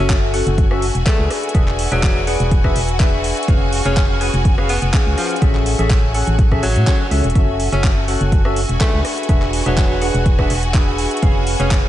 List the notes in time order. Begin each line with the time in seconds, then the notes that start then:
Already playing: F#4 G#5
0.00 F#1 C#4 F#4 A4 E5
0.10 kick, clap, closed hi-hat
0.34 C#4 F#4 A4 F#5, open hi-hat
0.47 F#1, closed hi-hat
0.58 kick, closed hi-hat
0.71 C#4 F#4 A4 E5, cross-stick
0.82 open hi-hat
0.95 E1, closed hi-hat
1.06 A3 D4 G#4 B4 E5, kick, clap, closed hi-hat
1.19 C#2
1.31 cross-stick, open hi-hat
1.43 closed hi-hat
1.49 closed hi-hat
1.55 E1 D4 G#4 B4 E5, kick, closed hi-hat
1.68 clap
1.79 open hi-hat
1.92 E1 F#3 D4 G#4 B4 E5, closed hi-hat
2.03 kick, clap, closed hi-hat
2.27 D4 G#4 B4 F#5, open hi-hat
2.40 E1, closed hi-hat
2.51 kick, closed hi-hat
2.64 D4 G#4 B4 E5, kick, cross-stick
2.76 E1, open hi-hat
2.88 closed hi-hat
3.00 D4 G#4 B4 E5, kick, clap, closed hi-hat
3.24 open hi-hat
3.37 closed hi-hat
3.43 closed hi-hat
3.48 F1 C#4 G#4 B4 F5, kick, closed hi-hat
3.73 open hi-hat
3.85 F1 C#4 G#4 B4 F5, closed hi-hat
3.97 kick, clap, closed hi-hat
4.21 C#4 G#4 B4 G#5, open hi-hat
4.34 F1, closed hi-hat
4.45 kick, closed hi-hat
4.58 C#4 G#4 B4 F5, cross-stick
4.69 B3, open hi-hat
4.82 F1 B3, closed hi-hat
4.93 C#4 G#4 B4 F5, kick, clap, closed hi-hat
5.06 C#2
5.18 F3, cross-stick, open hi-hat
5.31 closed hi-hat
5.36 closed hi-hat
5.42 A1 C#4 G#4 A4 E5, kick, closed hi-hat
5.55 clap
5.66 open hi-hat
5.79 A1 C#4 G#4 A4 E5, closed hi-hat
5.90 kick, clap, closed hi-hat
6.14 C#4 G#4 A4 F#5, open hi-hat
6.27 A1, closed hi-hat
6.39 kick, closed hi-hat
6.51 C#4 G#4 A4 E5, kick, cross-stick
6.63 F#3, open hi-hat
6.76 A2, closed hi-hat
6.87 C#4 G#4 A4 C#5, kick, clap, closed hi-hat
7.11 C#2 C#4 G#4 A4 E5, open hi-hat
7.24 E1, closed hi-hat
7.30 closed hi-hat
7.35 F#1 C#4 F#4 A4 E5 G#5, kick, closed hi-hat
7.60 open hi-hat
7.72 F#1 C#4 F#4 A4 E5, closed hi-hat
7.84 kick, clap, closed hi-hat
8.08 C#4 F#4 A4 F#5, open hi-hat
8.21 F#1, closed hi-hat
8.32 kick, closed hi-hat
8.45 C#4 F#4 A4 E5, cross-stick
8.56 open hi-hat
8.69 E1, closed hi-hat
8.80 A3 D4 G#4 B4 E5, kick, clap, closed hi-hat
8.93 C#2
9.05 cross-stick, open hi-hat
9.18 closed hi-hat
9.23 closed hi-hat
9.29 E1 D4 G#4 B4 E5, kick, closed hi-hat
9.42 clap
9.53 open hi-hat
9.66 E1 F#3 D4 G#4 B4 E5, closed hi-hat
9.77 kick, clap, closed hi-hat
10.02 D4 G#4 B4 F#5, open hi-hat
10.14 E1, closed hi-hat
10.26 kick, closed hi-hat
10.39 D4 G#4 B4 E5, kick, cross-stick
10.50 E1, open hi-hat
10.63 closed hi-hat
10.74 D4 G#4 B4 E5, kick, clap, closed hi-hat
10.98 open hi-hat
11.11 closed hi-hat
11.17 closed hi-hat
11.23 F1 C#4 G#4 B4 F5, kick, closed hi-hat
11.47 open hi-hat
11.60 F1 C#4 G#4 B4 F5, closed hi-hat
11.71 kick, clap, closed hi-hat